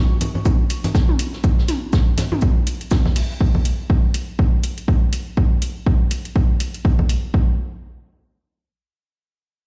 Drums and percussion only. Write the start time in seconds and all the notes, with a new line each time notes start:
0.21 closed hi-hat, low conga, shaker
0.35 low conga
0.45 kick, high tom, shaker
0.70 closed hi-hat, shaker
0.84 closed hi-hat, low conga
0.95 kick, snare, shaker
1.09 high tom
1.19 closed hi-hat, shaker
1.33 snare
1.44 kick, shaker
1.58 snare
1.68 snare, closed hi-hat, high tom, shaker
1.93 kick, snare, shaker
2.18 snare, closed hi-hat, low conga, shaker
2.32 high tom, low conga
2.41 kick, shaker
2.67 closed hi-hat, shaker
2.81 closed hi-hat
2.91 kick, snare, high tom, shaker
3.05 kick, snare
3.16 closed hi-hat, open hi-hat
3.41 kick
3.55 kick
3.65 closed hi-hat
3.90 kick
4.14 closed hi-hat
4.39 kick
4.63 closed hi-hat
4.78 closed hi-hat
4.88 kick
5.13 closed hi-hat
5.37 kick
5.62 closed hi-hat
5.86 kick
6.11 closed hi-hat
6.25 closed hi-hat
6.36 kick
6.60 closed hi-hat
6.74 closed hi-hat
6.85 kick
6.99 kick
7.09 closed hi-hat
7.34 kick